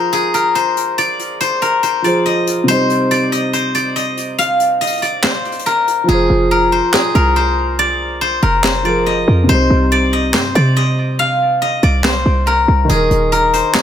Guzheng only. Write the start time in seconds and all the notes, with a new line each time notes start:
Already playing: G#4 A#4 C5
0.13 G#4
0.34 A#4
0.55 C5
0.98 D5
1.41 C5
1.62 A#4
1.83 C5
2.04 D5
2.26 D#5
2.68 C5
3.11 D5
3.32 D#5
3.53 C5
3.75 D5
3.96 D#5
4.38 F5
4.81 D#5
5.02 D5
5.24 C5
5.66 A#4
6.09 G#4
6.51 A#4
6.72 C5
6.94 G#4
7.15 A#4
7.36 C5
7.79 D5
8.21 C5
8.43 A#4
8.64 C5
8.85 D5
9.06 D#5
9.49 C5
9.92 D5
10.13 D#5
10.34 C5
10.55 D5
10.77 D#5
11.19 F5
11.62 D#5
11.83 D5
12.04 C5
12.47 A#4
12.90 G#4
13.32 A#4
13.54 C5
13.75 G#4